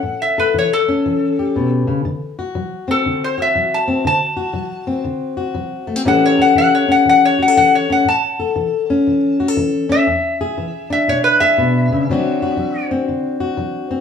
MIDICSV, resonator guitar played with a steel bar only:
0, 0, Header, 1, 2, 480
1, 0, Start_track
1, 0, Tempo, 500835
1, 47, Time_signature, 4, 2, 24, 8
1, 13422, End_track
2, 0, Start_track
2, 0, Title_t, "Resonator guitar played with a steel bar"
2, 0, Program_c, 0, 25
2, 0, Note_on_c, 0, 78, 89
2, 189, Note_off_c, 0, 78, 0
2, 209, Note_on_c, 0, 76, 85
2, 364, Note_off_c, 0, 76, 0
2, 379, Note_on_c, 0, 71, 84
2, 529, Note_off_c, 0, 71, 0
2, 561, Note_on_c, 0, 73, 81
2, 700, Note_off_c, 0, 73, 0
2, 703, Note_on_c, 0, 69, 94
2, 1629, Note_off_c, 0, 69, 0
2, 2788, Note_on_c, 0, 69, 97
2, 3091, Note_off_c, 0, 69, 0
2, 3108, Note_on_c, 0, 72, 80
2, 3256, Note_off_c, 0, 72, 0
2, 3278, Note_on_c, 0, 76, 85
2, 3576, Note_off_c, 0, 76, 0
2, 3587, Note_on_c, 0, 81, 80
2, 3891, Note_off_c, 0, 81, 0
2, 3901, Note_on_c, 0, 81, 101
2, 4830, Note_off_c, 0, 81, 0
2, 5825, Note_on_c, 0, 78, 94
2, 5976, Note_off_c, 0, 78, 0
2, 5996, Note_on_c, 0, 73, 89
2, 6141, Note_off_c, 0, 73, 0
2, 6149, Note_on_c, 0, 78, 85
2, 6298, Note_off_c, 0, 78, 0
2, 6307, Note_on_c, 0, 78, 102
2, 6457, Note_off_c, 0, 78, 0
2, 6467, Note_on_c, 0, 73, 87
2, 6616, Note_off_c, 0, 73, 0
2, 6628, Note_on_c, 0, 78, 88
2, 6777, Note_off_c, 0, 78, 0
2, 6799, Note_on_c, 0, 78, 97
2, 6943, Note_off_c, 0, 78, 0
2, 6953, Note_on_c, 0, 73, 92
2, 7099, Note_off_c, 0, 73, 0
2, 7116, Note_on_c, 0, 78, 82
2, 7248, Note_off_c, 0, 78, 0
2, 7259, Note_on_c, 0, 78, 109
2, 7412, Note_off_c, 0, 78, 0
2, 7430, Note_on_c, 0, 73, 87
2, 7578, Note_off_c, 0, 73, 0
2, 7594, Note_on_c, 0, 78, 87
2, 7740, Note_off_c, 0, 78, 0
2, 7749, Note_on_c, 0, 81, 93
2, 9143, Note_off_c, 0, 81, 0
2, 9506, Note_on_c, 0, 76, 97
2, 10430, Note_off_c, 0, 76, 0
2, 10471, Note_on_c, 0, 76, 89
2, 10617, Note_off_c, 0, 76, 0
2, 10631, Note_on_c, 0, 73, 85
2, 10768, Note_off_c, 0, 73, 0
2, 10772, Note_on_c, 0, 71, 97
2, 10927, Note_off_c, 0, 71, 0
2, 10929, Note_on_c, 0, 76, 100
2, 12330, Note_off_c, 0, 76, 0
2, 13422, End_track
0, 0, End_of_file